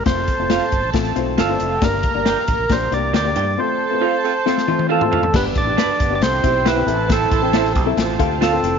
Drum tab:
CC |----------------|----------------|----------------|x---------------|
HH |x-x-x-x-xxx-x-x-|x-x-x-x-x-x-x-x-|----------------|--x-x-x-x-x-x-x-|
SD |o---o---o---o---|o---o---o---o---|--------oo------|o---o---o---o---|
T1 |----------------|----------------|----------oo----|----------------|
T2 |----------------|----------------|-------------o--|----------------|
FT |----------------|----------------|--------------oo|----------------|
BD |o-o---o-o-------|o-o---o-o-------|----------------|o-o---o---o-----|

CC |----------------|
HH |x-x-x-x-x-x-x-x-|
SD |o---oo--o---o---|
T1 |----------------|
T2 |----------------|
FT |----------------|
BD |o-o---o---o-----|